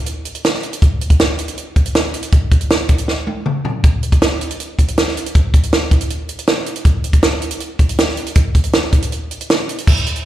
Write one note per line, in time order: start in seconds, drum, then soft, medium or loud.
0.06 closed hi-hat medium
0.25 closed hi-hat soft
0.35 closed hi-hat soft
0.45 snare medium
0.45 closed hi-hat soft
0.55 snare soft
0.63 closed hi-hat soft
0.73 closed hi-hat medium
0.82 kick loud
0.82 closed hi-hat medium
1.01 closed hi-hat medium
1.10 kick medium
1.10 closed hi-hat medium
1.20 snare loud
1.20 closed hi-hat medium
1.39 closed hi-hat medium
1.48 closed hi-hat medium
1.58 closed hi-hat medium
1.76 kick medium
1.76 closed hi-hat soft
1.86 closed hi-hat medium
1.95 snare medium
1.95 closed hi-hat medium
2.14 closed hi-hat medium
2.23 closed hi-hat medium
2.32 kick loud
2.32 closed hi-hat medium
2.51 kick medium
2.51 closed hi-hat medium
2.61 closed hi-hat medium
2.70 snare loud
2.70 closed hi-hat medium
2.89 kick medium
2.89 closed hi-hat medium
2.98 closed hi-hat medium
3.08 snare medium
3.27 high tom soft
3.46 mid tom medium
3.65 floor tom medium
3.84 kick loud
3.84 closed hi-hat medium
4.03 closed hi-hat medium
4.12 kick medium
4.12 closed hi-hat medium
4.22 snare loud
4.22 closed hi-hat medium
4.41 closed hi-hat medium
4.51 closed hi-hat medium
4.60 closed hi-hat medium
4.79 kick medium
4.79 closed hi-hat medium
4.88 closed hi-hat medium
4.98 snare medium
4.98 closed hi-hat medium
5.08 snare soft
5.17 closed hi-hat medium
5.26 closed hi-hat medium
5.35 kick medium
5.35 closed hi-hat medium
5.54 kick medium
5.54 closed hi-hat medium
5.63 closed hi-hat soft
5.73 snare loud
5.73 closed hi-hat medium
5.91 kick medium
5.91 closed hi-hat medium
6.01 closed hi-hat medium
6.10 closed hi-hat medium
6.29 closed hi-hat soft
6.39 closed hi-hat soft
6.47 snare medium
6.47 closed hi-hat medium
6.66 closed hi-hat soft
6.76 closed hi-hat soft
6.85 kick loud
6.85 closed hi-hat medium
7.04 closed hi-hat medium
7.13 kick medium
7.13 closed hi-hat medium
7.23 snare loud
7.23 closed hi-hat medium
7.42 closed hi-hat medium
7.51 closed hi-hat medium
7.60 closed hi-hat medium
7.79 kick medium
7.79 closed hi-hat soft
7.89 closed hi-hat medium
7.98 snare loud
7.98 closed hi-hat medium
8.08 snare soft
8.17 closed hi-hat medium
8.26 closed hi-hat medium
8.35 kick loud
8.35 closed hi-hat medium
8.55 kick medium
8.55 closed hi-hat medium
8.64 closed hi-hat medium
8.73 snare loud
8.73 closed hi-hat medium
8.93 kick medium
8.93 closed hi-hat medium
9.02 closed hi-hat medium
9.12 closed hi-hat medium
9.31 closed hi-hat soft
9.41 closed hi-hat medium
9.50 snare loud
9.50 closed hi-hat medium
9.69 closed hi-hat medium
9.78 closed hi-hat medium
9.87 kick loud
9.87 crash loud
9.97 closed hi-hat soft
10.06 closed hi-hat medium
10.16 closed hi-hat soft